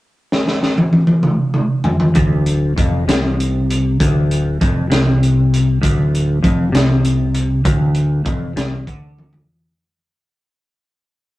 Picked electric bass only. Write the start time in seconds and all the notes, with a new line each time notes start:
2.16 D1
2.78 F1
3.08 C2
4.01 D1
4.61 F1
4.93 C2
5.83 D1
6.44 F1
6.75 C2
7.65 D1
8.26 F1
8.57 C2
8.87 D2